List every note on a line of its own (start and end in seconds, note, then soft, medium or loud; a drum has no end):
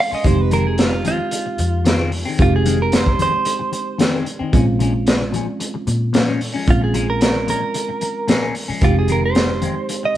0.00 0.20 G#3 medium
0.00 0.20 C4 medium
0.00 0.21 C#4 medium
0.00 0.21 F4 medium
0.00 0.13 F5 medium
0.12 0.25 G#3 soft
0.12 0.25 C#4 soft
0.12 0.25 F4 medium
0.12 0.27 D#5 medium
0.12 muted fingered electric bass stroke soft
0.24 1.11 F1 loud
0.24 0.39 F2 medium
0.24 0.39 D#3 medium
0.24 2.35 G#3 medium
0.24 0.38 G#3 medium
0.24 2.35 C4 medium
0.24 0.37 C4 medium
0.24 2.35 D#4 soft
0.24 2.35 G4 medium
0.24 0.41 C5 medium
0.24 kick loud
0.24 closed hi-hat medium
0.39 0.52 B4 medium
0.39 muted clean electric guitar stroke soft
0.51 0.65 F2 medium
0.51 0.66 D#3 medium
0.51 0.65 G#3 medium
0.51 0.64 C4 medium
0.51 0.66 A#4 medium
0.51 closed hi-hat medium
0.65 0.81 G#4 medium
0.65 muted clean electric guitar stroke soft
0.78 1.06 F4 medium
0.78 snare loud
0.78 closed hi-hat medium
0.92 muted clean electric guitar stroke soft
1.05 1.19 F2 medium
1.05 1.20 D#3 medium
1.05 1.19 G#3 medium
1.05 1.18 C4 medium
1.05 2.10 F4 medium
1.05 closed hi-hat medium
1.19 muted clean electric guitar stroke soft
1.31 muted clean electric guitar stroke soft
1.31 closed hi-hat medium
1.46 muted clean electric guitar stroke soft
1.58 2.23 F2 medium
1.58 muted clean electric guitar stroke soft
1.58 closed hi-hat medium
1.85 1.99 F2 medium
1.85 1.99 D#3 medium
1.85 1.98 G#3 medium
1.85 1.98 C4 medium
1.85 snare loud
1.85 closed hi-hat medium
1.99 2.10 F2 medium
1.99 2.11 D#3 medium
1.99 2.12 G#3 medium
1.99 2.12 C4 medium
2.12 muted clean electric guitar stroke soft
2.12 open hi-hat medium
2.25 2.43 D#3 soft
2.25 2.42 G#3 soft
2.25 2.42 C4 medium
2.39 3.25 F1 loud
2.39 4.49 G#3 medium
2.39 4.50 C4 medium
2.39 4.50 D#4 medium
2.39 2.54 F4 medium
2.39 4.50 G4 medium
2.39 kick medium
2.39 closed hi-hat medium
2.53 2.81 G#4 medium
2.53 muted clean electric guitar stroke soft
2.65 2.80 F2 medium
2.65 2.80 D#3 medium
2.65 2.79 G#3 medium
2.65 2.78 C4 medium
2.65 closed hi-hat medium
2.79 2.96 A#4 medium
2.79 muted clean electric guitar stroke soft
2.92 3.20 C5 medium
2.92 snare loud
2.92 closed hi-hat medium
3.06 muted clean electric guitar stroke soft
3.06 kick medium
3.19 3.33 F2 medium
3.19 3.33 D#3 medium
3.19 3.33 G#3 medium
3.19 3.32 C4 medium
3.19 4.25 C5 medium
3.19 closed hi-hat medium
3.33 muted clean electric guitar stroke soft
3.45 muted clean electric guitar stroke soft
3.45 closed hi-hat medium
3.59 muted clean electric guitar stroke soft
3.72 muted clean electric guitar stroke soft
3.72 closed hi-hat medium
3.98 4.13 F2 medium
3.98 4.14 D#3 medium
3.98 4.13 G#3 medium
3.98 4.12 C4 medium
3.98 snare loud
3.98 closed hi-hat medium
4.13 4.25 F2 medium
4.13 4.25 D#3 medium
4.13 4.26 G#3 medium
4.13 4.26 C4 medium
4.26 muted clean electric guitar stroke soft
4.26 closed hi-hat medium
4.39 4.53 D#3 soft
4.39 4.53 G#3 soft
4.39 4.53 C4 medium
4.39 muted fingered electric bass stroke soft
4.52 5.39 A#1 loud
4.52 4.67 A#2 medium
4.52 4.67 F3 medium
4.52 6.63 G#3 medium
4.52 4.67 G#3 medium
4.52 6.64 C4 medium
4.52 6.64 C#4 medium
4.52 4.66 C#4 medium
4.52 6.64 F4 medium
4.52 kick medium
4.52 closed hi-hat medium
4.67 muted clean electric guitar stroke soft
4.79 4.94 A#2 medium
4.79 4.94 F3 medium
4.79 4.94 G#3 medium
4.79 4.93 C#4 medium
4.79 closed hi-hat medium
4.94 muted clean electric guitar stroke soft
5.07 snare loud
5.07 closed hi-hat medium
5.20 muted clean electric guitar stroke soft
5.32 5.47 A#2 medium
5.32 5.48 F3 medium
5.32 5.47 G#3 medium
5.32 5.46 C#4 medium
5.32 closed hi-hat medium
5.47 muted clean electric guitar stroke soft
5.60 muted clean electric guitar stroke soft
5.60 closed hi-hat medium
5.74 muted clean electric guitar stroke soft
5.87 6.52 A#2 medium
5.87 muted clean electric guitar stroke soft
5.87 closed hi-hat medium
6.13 6.28 A#2 medium
6.13 6.28 F3 medium
6.13 6.27 G#3 medium
6.13 6.26 C#4 medium
6.13 snare loud
6.13 closed hi-hat medium
6.27 6.39 A#2 medium
6.27 6.40 F3 medium
6.27 6.40 G#3 medium
6.27 6.41 C#4 medium
6.40 muted clean electric guitar stroke soft
6.40 open hi-hat medium
6.54 6.72 F3 soft
6.54 6.71 G#3 soft
6.54 6.70 C#4 medium
6.67 7.54 A#1 loud
6.67 8.78 G#3 medium
6.67 8.78 C4 soft
6.67 8.78 C#4 medium
6.67 8.78 F4 medium
6.67 6.83 F4 medium
6.67 kick medium
6.67 closed hi-hat medium
6.81 7.09 G#4 medium
6.81 muted clean electric guitar stroke soft
6.94 7.08 A#2 medium
6.94 7.09 F3 medium
6.94 7.08 G#3 medium
6.94 7.07 C#4 medium
6.94 closed hi-hat medium
7.08 7.22 A#4 medium
7.08 muted clean electric guitar stroke soft
7.21 7.48 A#4 medium
7.21 snare loud
7.21 closed hi-hat medium
7.35 muted clean electric guitar stroke soft
7.47 7.62 A#2 medium
7.47 7.62 F3 medium
7.47 7.61 G#3 medium
7.47 7.60 C#4 medium
7.47 8.53 A#4 medium
7.47 closed hi-hat medium
7.62 muted clean electric guitar stroke soft
7.74 muted clean electric guitar stroke soft
7.74 closed hi-hat medium
7.89 muted clean electric guitar stroke soft
8.01 muted clean electric guitar stroke soft
8.01 closed hi-hat medium
8.28 8.42 A#2 medium
8.28 8.42 F3 medium
8.28 8.41 G#3 medium
8.28 8.41 C#4 medium
8.28 snare loud
8.28 closed hi-hat medium
8.42 8.54 A#2 medium
8.42 8.54 F3 medium
8.42 8.55 G#3 medium
8.42 8.55 C#4 medium
8.55 muted clean electric guitar stroke soft
8.55 open hi-hat medium
8.68 8.82 F3 soft
8.68 8.82 G#3 soft
8.68 8.82 C#4 medium
8.68 muted fingered electric bass stroke soft
8.81 9.68 F1 medium
8.81 8.96 F2 medium
8.81 8.96 D#3 medium
8.81 10.17 G#3 medium
8.81 8.95 G#3 medium
8.81 10.17 C4 soft
8.81 8.94 C4 medium
8.81 10.17 D#4 medium
8.81 8.97 F4 medium
8.81 10.17 G4 medium
8.81 kick loud
8.81 closed hi-hat medium
8.96 9.10 G#4 medium
8.96 muted clean electric guitar stroke soft
9.08 9.23 F2 medium
9.08 9.23 D#3 medium
9.08 9.22 G#3 medium
9.08 9.21 C4 medium
9.08 closed hi-hat medium
9.12 9.24 A#4 medium
9.22 10.02 C5 medium
9.22 muted clean electric guitar stroke soft
9.35 snare loud
9.35 closed hi-hat medium
9.49 muted clean electric guitar stroke soft
9.62 9.76 F2 medium
9.62 9.76 D#3 medium
9.62 9.76 G#3 medium
9.62 9.75 C4 medium
9.62 closed hi-hat medium
9.76 muted clean electric guitar stroke soft
9.89 muted clean electric guitar stroke soft
9.89 closed hi-hat medium
10.03 10.17 D#5 medium
10.03 muted clean electric guitar stroke soft